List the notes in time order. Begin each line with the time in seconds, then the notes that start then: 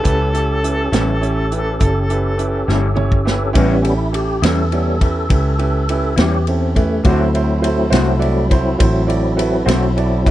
Already playing: A4
0.03 C#2 C#4 E4 G4 A4 B4, kick, closed hi-hat
0.33 C#4 E4 G4 A4, closed hi-hat
0.63 C#4 E4 G4 B4, closed hi-hat
0.92 A1 A2 G3 C#4 E4 G4 B4, snare, closed hi-hat
1.20 C#4 E4 G4 C#5, closed hi-hat
1.52 C#4 E4 G4 B4, closed hi-hat
1.79 F#1 C#4 E4 G4 A4, kick, closed hi-hat
2.10 C#4 E4 G4 B4, closed hi-hat
2.38 C#4 E4 G4 B4, closed hi-hat
2.67 G1 G3 C#4 E4 G4 A4, snare
2.71 A2
2.94 C#4 E4 G4 C#5, mid tom
3.12 kick
3.25 C#4 E4 G4 B4, snare
3.53 A1 A2 G3 B3 C#4 E4 G4 B4, kick, ride
3.58 E4
3.82 C#4 E4 G4 A4, ride
4.11 C#4 E4 G4 A4, ride
4.42 E2 A2 G3 C#4 E4 G4 G#4 B4, snare, ride
4.46 A4
4.71 G3 B3 C#4 E4 G4 A4, ride
5.01 C#4 E4 G4 B4, kick, ride
5.29 C#2 C#4 E4 G4 B4, kick, ride
5.58 C#4 E4 G4 B4, ride
5.89 C#4 E4 G4 B4, ride
6.16 E2 A2 G3 C#4 E4 G4 B4, snare, ride
6.47 C4 C#4 E4 G4 A4, ride
6.75 A3 C#4 E4 G4 B4, kick, ride
7.04 D2 D3 F#3 A3 C4 E4 F#4 A4 C5, kick, ride
7.34 E4 F#4 A4 C5, ride
7.62 E4 F#4 A4 C5, ride
7.90 C2 A3 C4 E4 F#4 A4 C5, snare, ride
7.94 D3
8.19 E4 F#4 A4 D5, ride
8.50 E4 F#4 A4 C5, kick, ride
8.78 A1 E4 F#4 A4 C5, kick, ride
9.07 E4 F#4 A4 D5, ride
9.37 E4 F#4 A4 B4, ride
9.65 B1 D3 A3 C4 E4 F#4 A4 C5, ride
9.70 snare
9.96 E4 F#4 A4 D5 A5, ride
10.26 E4 F#4 A4 B4 D5, kick, ride